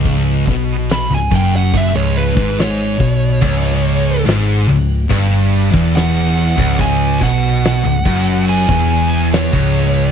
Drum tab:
CC |x-x-x-x-x-x-x-x-|x-x-x-x-x-x-x-x-|x-x-x-x-x-x-x-x-|
SD |--o-oo------o---|----o-------o---|--o-o-------o---|
BD |o-o---o-o--o--o-|o-------o--o---o|o-o---o--o---o--|